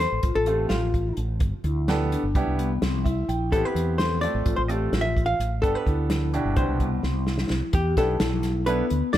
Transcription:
Already playing: A4
0.00 C5, closed hi-hat
0.12 A1
0.23 A1 F4, kick, closed hi-hat
0.35 A1 A4
0.46 A3 C4 F4 G4 A4, closed hi-hat
0.69 A1 F4, snare, closed hi-hat
0.94 kick, closed hi-hat
1.17 A1, closed hi-hat
1.40 G1, kick, closed hi-hat
1.64 D2 E4, closed hi-hat
1.88 B3 D4 G4 A4, snare, closed hi-hat
2.12 D4, closed hi-hat
2.23 G1
2.35 C2 B3 D4 E4 G4, kick, closed hi-hat
2.47 C2
2.59 B3, closed hi-hat
2.82 C2 C4, snare, closed hi-hat
3.04 E4 E5, kick, closed hi-hat
3.29 A#1 G5, closed hi-hat
3.52 A1 B3 C4 E4 G4 A4, kick, closed hi-hat
3.65 B4
3.75 E2, closed hi-hat
3.98 A4 C5, snare, closed hi-hat
4.21 A3 C4 F4 A4 D5, closed hi-hat
4.35 A1
4.46 A1 F4, kick, closed hi-hat
4.56 A1 C5
4.68 A3 C4 F4 G4 A4 D5, closed hi-hat
4.92 A1 F4, snare, closed hi-hat
5.01 E5
5.17 kick, closed hi-hat
5.26 F5
5.40 A1, closed hi-hat
5.62 G1 B3 D4 G4 A4, kick, closed hi-hat
5.75 B4
5.87 D2 E4, kick, closed hi-hat
6.10 snare, closed hi-hat
6.33 B2 D4 E4 G4, closed hi-hat
6.45 G1
6.56 C2 B3 D4 E4 G4 C5, kick, closed hi-hat
6.69 C2
6.80 B3, kick, closed hi-hat
7.03 C2 C4, snare
7.27 E4, snare
7.38 snare
7.50 C2, snare
7.73 E2 G4, kick, closed hi-hat
7.97 B1 B3 D4 E4 G4 A4, kick, snare, closed hi-hat
8.20 B1 E4, snare, closed hi-hat
8.43 snare, closed hi-hat
8.66 B3 D4 E4 A4 B4, closed hi-hat
8.90 D2, closed hi-hat
9.13 E2 E4 D5, snare, closed hi-hat

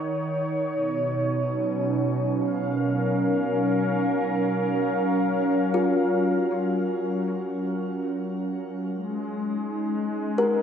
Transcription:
Already playing: D#3 D#4 C#5 F#5
0.74 B2
1.47 F#3 C#4
2.30 F5
2.60 A#4
5.74 F4
8.92 G#3
9.47 D#4
10.38 A#4

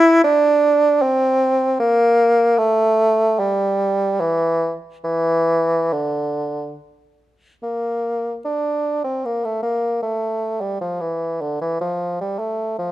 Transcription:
Already playing: E4
0.24 D4
1.02 C4
1.80 A#3
2.58 A3
3.39 G3
4.20 E3
5.04 E3
5.93 D3
7.63 A#3
8.45 D4
9.04 C4
9.25 A#3
9.45 A3
9.63 A#3
10.02 A3
10.61 G3
10.81 F3
11.01 E3
11.41 D3
11.61 E3
11.81 F3
12.21 G3
12.39 A3
12.79 F3

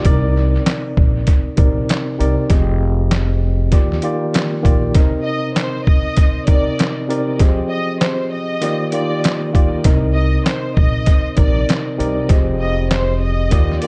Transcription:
0.04 C2 C3 C4 D#4 A#4 D5, kick, closed hi-hat
0.66 snare, clap, closed hi-hat
0.97 A#1, kick
1.27 kick, closed hi-hat
1.57 A#1 C3 C4 D#4 A#4 D5, kick, closed hi-hat
1.89 snare, clap, closed hi-hat
2.18 C2 C3 C4 D#4 A#4 D5, closed hi-hat
2.49 F1 F3 C4 G4 G#4 D#5, kick, closed hi-hat
3.11 snare, clap, closed hi-hat
3.71 D#2 D#3 A#3 F4 G4 D5, kick, closed hi-hat
3.92 snare
4.02 D#3 A#3 F4 G4 D5, closed hi-hat
4.34 snare, clap, closed hi-hat
4.63 A#1 D#3 A#3 F4 G4 D5, kick, closed hi-hat
4.94 C3 C4 D#4 A#4 D#5, kick, closed hi-hat
5.24 D#5
5.56 C5, snare, clap, closed hi-hat
5.86 D#5, kick
6.17 kick, closed hi-hat
6.47 C3 C4 D#4 A#4 D5, kick, closed hi-hat
6.79 snare, clap, closed hi-hat
7.08 C3 C4 D#4 A#4 D5, closed hi-hat
7.39 F3 C4 G4 G#4 D#5, kick, closed hi-hat
7.71 D#5
8.01 C5, snare, clap, closed hi-hat
8.33 D#5
8.61 D#3 A#3 F4 G4 D5, closed hi-hat
8.92 D#3 A#3 F4 G4 D5, closed hi-hat
9.24 snare, clap, closed hi-hat
9.53 D#3 A#3 F4 G4 D5, kick, closed hi-hat
9.84 C2 C3 C4 D#4 A#4 D#5, kick, closed hi-hat
10.14 D#5
10.46 C5, snare, clap, closed hi-hat
10.77 A#1 D#5, kick
11.06 kick, closed hi-hat
11.36 A#1 C3 C4 D#4 A#4 D5, kick, closed hi-hat
11.69 snare, clap, closed hi-hat
11.98 C2 C3 C4 D#4 A#4 D5, closed hi-hat
12.28 F1 F3 C4 G4 G#4 D#5, kick, closed hi-hat
12.61 D#5
12.91 C5, snare, clap, closed hi-hat
13.22 D#5
13.51 D#2 D#3 A#3 F4 G4 D5, kick, closed hi-hat
13.71 snare
13.81 D#3 A#3 F4 G4 D5, closed hi-hat

